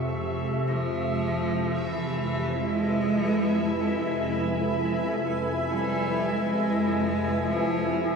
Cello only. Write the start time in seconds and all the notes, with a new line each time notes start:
0.68 F3
1.92 E3
2.54 G#3
3.79 G#3
5.68 G3
6.28 G#3
7.51 F3